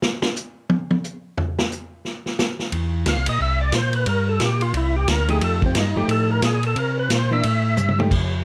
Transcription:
0.02 snare
0.22 snare
0.36 hi-hat pedal
0.70 high tom
0.91 high tom
1.04 hi-hat pedal
1.38 floor tom
1.59 snare
1.72 hi-hat pedal
2.05 snare
2.26 snare
2.39 snare, hi-hat pedal
2.59 snare
2.72 tonewheel organ E2, ride
3.06 tonewheel organ D2 F5, snare, hi-hat pedal, ride
3.17 tonewheel organ C2
3.26 tonewheel organ A#2 D#5, ride
3.40 tonewheel organ C2 E5
3.61 tonewheel organ D5
3.72 tonewheel organ A#2 C5, snare, hi-hat pedal, ride
3.93 tonewheel organ B4, ride
4.06 tonewheel organ G2 A#4, ride
4.29 tonewheel organ A4
4.39 tonewheel organ A#2, snare, hi-hat pedal, ride
4.44 tonewheel organ G4
4.61 tonewheel organ F4, ride
4.73 tonewheel organ C2 E4, ride
4.96 tonewheel organ G4
5.07 tonewheel organ D2 A#4, snare, hi-hat pedal, ride
5.28 hollow-body jazz guitar F3 A3 D#4 G4, tonewheel organ G#4, ride
5.41 tonewheel organ F2 A4, ride
5.62 tonewheel organ C4, kick
5.75 tonewheel organ G2 D#4, snare, hi-hat pedal, ride
5.96 tonewheel organ G2 G4, hollow-body jazz guitar F3 A3 D#4 G4
6.08 tonewheel organ A2 A4, ride
6.32 tonewheel organ A#4
6.42 tonewheel organ A#2 G#4, snare, hi-hat pedal, ride
6.63 tonewheel organ A4, ride
6.76 tonewheel organ C3 A#4, ride
6.99 tonewheel organ B4
7.10 tonewheel organ A#2, snare, hi-hat pedal, ride
7.15 tonewheel organ C5
7.31 hollow-body jazz guitar E3 A#3 D4, tonewheel organ E5
7.43 tonewheel organ A2, ride
7.77 tonewheel organ G2, hi-hat pedal, mid tom
7.88 mid tom
7.99 hollow-body jazz guitar F3 A3 D#4 G4, mid tom
8.11 tonewheel organ F2, kick, crash

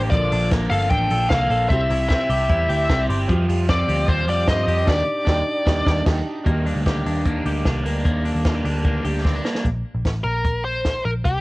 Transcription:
Already playing: overdriven electric guitar A#3 D4 G4, clean electric guitar A#3 D4, upright piano D4 D#4 G4
0.10 picked electric bass A#1, overdriven electric guitar A#2 D3 F3 A#3 D4 A4, upright piano A#3 D4 A4, lead electric guitar D5, kick, closed hi-hat
0.32 picked electric bass A#1, overdriven electric guitar F3 A#3 D4 A4, open hi-hat
0.51 overdriven electric guitar A#2 D3 F3 A#3 D4 A4, kick, snare, closed hi-hat
0.70 picked electric bass G1, overdriven electric guitar F3 A#3 D4 A4, lead electric guitar F5, open hi-hat
0.90 picked electric bass A1, overdriven electric guitar F3 A#3 D4 A4, lead electric guitar G5, kick, closed hi-hat
1.10 picked electric bass A#1, overdriven electric guitar F3 A#3 D4 A4, open hi-hat
1.29 picked electric bass C2, overdriven electric guitar A#2 D3 F3 A#3 D4 A4, lead electric guitar F5, kick, snare, closed hi-hat
1.50 picked electric bass A#1, overdriven electric guitar F3 A#3 D4 A4, open hi-hat
1.69 picked electric bass C2, overdriven electric guitar C3 G3 C4 E4 G4, upright piano C4 E4 G4, lead electric guitar E5, kick, closed hi-hat
1.90 picked electric bass C2, overdriven electric guitar C4 E4 G4, open hi-hat
2.09 overdriven electric guitar C3 G3 C4 E4 G4, lead electric guitar E5, kick, snare, closed hi-hat
2.30 picked electric bass C2, overdriven electric guitar C4 E4 G4, open hi-hat
2.49 picked electric bass E2, overdriven electric guitar G3 C4 E4 G4, kick, closed hi-hat
2.69 picked electric bass D2, overdriven electric guitar C4 E4 G4, upright piano E5, open hi-hat
2.89 picked electric bass C2, overdriven electric guitar C3 G3 C4 E4 G4, upright piano G5, kick, snare
3.09 picked electric bass G1, overdriven electric guitar C4 E4 G4, upright piano C6, open hi-hat
3.28 picked electric bass F2, overdriven electric guitar F3 G3 C4 F4, upright piano C4 F4 G4, kick, closed hi-hat
3.48 picked electric bass F2, overdriven electric guitar G3 C4 F4, open hi-hat
3.68 overdriven electric guitar F3 G3 C4 F4, lead electric guitar D5, kick, snare, closed hi-hat
3.88 picked electric bass D2, overdriven electric guitar G3 C4 F4, clean electric guitar G4, open hi-hat
4.08 picked electric bass D#2, overdriven electric guitar F3 G3 C4 F4, lead electric guitar C5, kick
4.28 picked electric bass F2, overdriven electric guitar G3 C4 F4, clean electric guitar G4, lead electric guitar D5, open hi-hat
4.48 picked electric bass G2, overdriven electric guitar F3 G3 C4 F4, lead electric guitar D#5, kick, snare, closed hi-hat
4.67 picked electric bass F2, overdriven electric guitar G3 C4 F4, clean electric guitar G4, open hi-hat
4.85 picked electric bass D#2, overdriven electric guitar D#3 G3 A#3 D4, upright piano D4 D#4 G4, lead electric guitar D5, kick, snare, crash
5.25 picked electric bass D#2, overdriven electric guitar D#3 G3 A#3, upright piano D4 D#4 G4, kick, snare
5.29 overdriven electric guitar D4
5.65 picked electric bass D#2, overdriven electric guitar D#3 G3 A#3 D4, upright piano D4 D#4 G4, kick, snare
5.85 picked electric bass D#2, overdriven electric guitar G3 A#3 D4, upright piano D4 D#4 G4, kick, snare
6.05 picked electric bass D#2, overdriven electric guitar D#3 G3 A#3 D4, upright piano D4 D#4 G4, kick, snare, crash
6.44 picked electric bass D#2, overdriven electric guitar D#3 G3 A#3 D4, upright piano D4 D#4 G4, kick, closed hi-hat
6.65 overdriven electric guitar G3 A#3 D4, open hi-hat
6.76 picked electric bass D2
6.86 overdriven electric guitar D#3 G3 A#3 D4, clean electric guitar G4, kick, snare, closed hi-hat
7.05 picked electric bass D#2, overdriven electric guitar G3 A#3 D4, open hi-hat
7.25 overdriven electric guitar D#3 G3 A#3 D4, kick, closed hi-hat
7.45 picked electric bass D2, overdriven electric guitar G3 A#3 D4, clean electric guitar G4, open hi-hat
7.65 picked electric bass C2, overdriven electric guitar D#3 G3 A#3 D4, kick, snare, closed hi-hat
7.85 picked electric bass D2, overdriven electric guitar G3 A#3 D4, open hi-hat
8.05 picked electric bass D#2, overdriven electric guitar D#3 G3 A#3 D4, kick, closed hi-hat
8.25 overdriven electric guitar G3 A#3 D4, open hi-hat
8.35 picked electric bass D#2
8.45 overdriven electric guitar D#3 G3 A#3 D4, clean electric guitar F4, kick, snare, closed hi-hat
8.55 clean electric guitar G4
8.65 picked electric bass D2, overdriven electric guitar G3 A#3 D4, open hi-hat
8.85 overdriven electric guitar D#3 G3 A#3 D4, kick, closed hi-hat
9.05 picked electric bass D2, overdriven electric guitar G3 A#3 D4, clean electric guitar G4, open hi-hat
9.25 overdriven electric guitar D#3 G3 A#3 D4, clean electric guitar C4, kick, snare
9.35 clean electric guitar D4
9.45 overdriven electric guitar G3 A#3 D4, snare
9.55 snare
9.65 picked electric bass A#1, kick, closed hi-hat
9.95 picked electric bass A#1
10.05 picked electric bass A1, kick, snare, closed hi-hat
10.24 picked electric bass A#1, lead electric guitar A#4
10.44 kick, closed hi-hat
10.65 lead electric guitar C5
10.85 kick, snare, closed hi-hat
11.05 picked electric bass A#1, lead electric guitar A#4
11.25 picked electric bass C2, lead electric guitar G4, kick, closed hi-hat

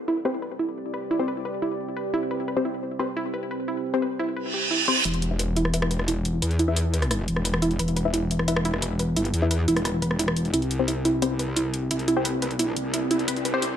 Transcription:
Already playing: ambient pad C4 G4 D5
0.08 synth arpeggio sound E4
0.25 synth stab C4 G4 C5, synth arpeggio sound B4
0.42 synth arpeggio sound B4
0.59 synth arpeggio sound E4
0.94 synth arpeggio sound B4
1.11 synth arpeggio sound E4
1.19 synth stab C4 G4 C5
1.28 synth arpeggio sound B4
1.45 synth arpeggio sound B4
1.62 synth arpeggio sound E4
1.97 synth arpeggio sound B4
2.14 synth arpeggio sound E4
2.31 synth arpeggio sound B4, ambient pad C5
2.48 synth arpeggio sound B4
2.57 synth stab C4 G4 C5
2.65 synth arpeggio sound E4
2.99 synth stab C4 G4 C5, synth arpeggio sound B4
3.17 synth arpeggio sound E4
3.34 synth arpeggio sound B4
3.51 synth arpeggio sound B4
3.68 synth arpeggio sound E4
3.94 synth stab C4 G4 C5
4.02 synth arpeggio sound B4
4.19 synth arpeggio sound E4
4.37 synth arpeggio sound B4, reverse cymbal
4.54 synth arpeggio sound G4
4.71 synth arpeggio sound E4
4.88 synth stab C4 G4 C5
5.05 wobble bass E1, ambient pad E4 B4 F#5, synth arpeggio sound E4, closed hi-hat
5.14 closed hi-hat
5.22 closed hi-hat
5.31 synth stab E4 B4 E5
5.39 synth arpeggio sound B4, closed hi-hat
5.56 synth arpeggio sound E4, closed hi-hat
5.65 cross-stick
5.74 synth stab E4 B4 E5, synth arpeggio sound B4, closed hi-hat
5.82 cross-stick
5.91 synth arpeggio sound B4, closed hi-hat
5.99 cross-stick
6.08 synth arpeggio sound E4, closed hi-hat
6.25 closed hi-hat
6.42 wobble bass E2, synth arpeggio sound B4, closed hi-hat
6.51 closed hi-hat
6.59 synth arpeggio sound E4, closed hi-hat
6.68 synth stab E4 B4 E5
6.76 synth arpeggio sound B4, closed hi-hat
6.94 synth arpeggio sound B4, closed hi-hat
7.02 cross-stick, closed hi-hat
7.11 synth arpeggio sound E4, cross-stick, closed hi-hat
7.28 wobble bass E1, closed hi-hat
7.36 cross-stick
7.45 synth arpeggio sound B4, closed hi-hat
7.54 cross-stick
7.62 synth arpeggio sound E4, closed hi-hat
7.71 closed hi-hat
7.79 wobble bass E1, synth arpeggio sound B4, closed hi-hat
7.88 closed hi-hat
7.97 synth arpeggio sound B4, closed hi-hat
8.05 synth stab E4 B4 E5
8.14 synth arpeggio sound E4, closed hi-hat
8.31 closed hi-hat
8.39 cross-stick
8.48 synth stab E4 B4 E5, synth arpeggio sound B4, closed hi-hat
8.56 cross-stick
8.65 synth arpeggio sound E4, closed hi-hat
8.74 cross-stick
8.82 synth arpeggio sound B4, closed hi-hat
8.99 synth arpeggio sound B4, closed hi-hat
9.16 wobble bass G1, synth arpeggio sound E4, closed hi-hat
9.25 closed hi-hat
9.34 wobble bass E2, closed hi-hat
9.42 synth stab E4 B4 E5
9.51 synth arpeggio sound B4, closed hi-hat
9.68 wobble bass E1, synth arpeggio sound E4, closed hi-hat
9.77 cross-stick, closed hi-hat
9.85 synth arpeggio sound B4, cross-stick, closed hi-hat
10.02 wobble bass E1, synth arpeggio sound B4, closed hi-hat
10.11 cross-stick
10.19 synth arpeggio sound E4, closed hi-hat
10.28 cross-stick
10.36 closed hi-hat
10.45 closed hi-hat
10.54 wobble bass C2, ambient pad C4 G4 D5, synth arpeggio sound E4, closed hi-hat, riser
10.62 closed hi-hat
10.71 closed hi-hat
10.79 synth stab C4 G4 C5
10.88 synth arpeggio sound E4, closed hi-hat
11.05 synth arpeggio sound E4, closed hi-hat
11.22 synth stab C4 G4 C5, synth arpeggio sound B4, closed hi-hat
11.39 synth arpeggio sound B4, closed hi-hat
11.56 synth arpeggio sound E4, closed hi-hat
11.74 closed hi-hat
11.91 wobble bass C2, synth arpeggio sound E4, closed hi-hat
11.99 closed hi-hat
12.08 synth arpeggio sound E4, closed hi-hat
12.17 synth stab C4 G4 C5
12.25 synth arpeggio sound B4, closed hi-hat
12.42 synth arpeggio sound B4, closed hi-hat
12.51 wobble bass B1, closed hi-hat
12.59 synth arpeggio sound E4, closed hi-hat
12.76 wobble bass C2, closed hi-hat
12.94 synth arpeggio sound E4, closed hi-hat
13.11 synth arpeggio sound E4, closed hi-hat
13.19 closed hi-hat
13.28 wobble bass C2, synth arpeggio sound B4, closed hi-hat
13.37 closed hi-hat
13.45 synth arpeggio sound B4, closed hi-hat
13.54 synth stab C4 G4 C5
13.62 synth arpeggio sound E4, closed hi-hat

